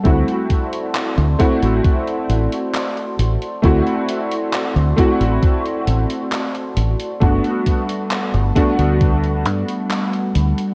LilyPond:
<<
  \new Staff \with { instrumentName = "Ambient pad" } { \time 4/4 \key d \mixolydian \tempo 4 = 67 <fis' d'' a'' c'''>1~ | <fis' d'' a'' c'''>1 | <g fis'' a'' b''>1 | }
  \new Staff \with { instrumentName = "Electric grand piano" } { \time 4/4 \key d \mixolydian <a c' e' fis'>4. <a c' e' fis'>16 r2 r16 | <a c' e' fis'>4. <a c' e' fis'>2~ <a c' e' fis'>8 | <a b d' fis'>4. <a b d' fis'>16 r2 r16 | }
  \new Staff \with { instrumentName = "Fingered electric bass" } { \clef bass \time 4/4 \key d \mixolydian d,16 r4 d,16 r16 a,,16 r8 a,,16 r8. a,,16 r16 | d,16 r4 d,16 r16 a,,16 r8 a,,16 r8. a,,16 r16 | g,,16 r4 g,,16 r16 d,8. g,16 r8. d,16 r16 | }
  \new DrumStaff \with { instrumentName = "Drums" } \drummode { \time 4/4 <hh bd>16 hh16 <hh bd>16 hh16 <hc hh>16 hh16 <hh bd>16 hh16 <hh bd>16 hh16 hh16 hh16 <hc hh>16 hh16 hh16 hh16 | <hh bd>16 hh16 hh16 hh16 <hc hh>16 hh16 <hh bd>16 hh16 <hh bd>16 hh16 hh16 hh16 <hc hh>16 hh16 hh16 hh16 | <hh bd>16 hh16 <hh bd>16 hh16 <hc hh>16 hh16 <hh bd>16 hh16 <hh bd>16 hh16 hh16 hh16 <hc hh>16 hh16 hh16 hh16 | }
>>